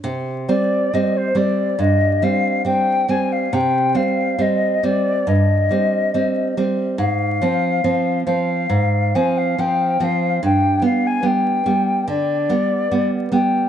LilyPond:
<<
  \new Staff \with { instrumentName = "Flute" } { \time 4/4 \key c \minor \tempo 4 = 70 r8 d''8 ees''16 c''16 d''8 ees''8 f''8 g''8 aes''16 f''16 | g''8 f''8 ees''8 d''8 ees''4. r8 | f''4. f''4 aes''16 f''16 g''8 f''8 | g''8 f''16 aes''16 g''4 d''4. g''8 | }
  \new Staff \with { instrumentName = "Nylon-string guitar" } { \clef bass \time 4/4 \key c \minor c8 <g c'>8 <g c'>8 <g c'>8 g,8 <g c'>8 <g c'>8 <g c'>8 | c8 <g c'>8 <g c'>8 <g c'>8 g,8 <g c'>8 <g c'>8 <g c'>8 | aes,8 <f c'>8 <f c'>8 <f c'>8 aes,8 <f c'>8 <f c'>8 <f c'>8 | g,8 <g b>8 <g b>8 <g b>8 d8 <g b>8 <g b>8 <g b>8 | }
>>